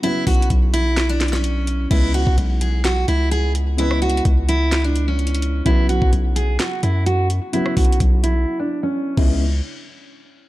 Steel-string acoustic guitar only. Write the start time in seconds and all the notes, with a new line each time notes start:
0.04 E4
0.27 F#4
0.74 E4
1.09 D4
1.33 C#4
1.91 E4
2.14 F#4
2.61 G#4
2.85 F#4
3.08 E4
3.31 G#4
3.79 E4
4.02 F#4
4.49 E4
4.84 D4
5.08 C#4
5.66 E4
5.89 F#4
6.36 G#4
6.59 F#4
6.83 E4
7.06 F#4
7.53 E4
7.77 F#4
8.24 E4
8.59 D4
8.83 C#4
9.17 C#4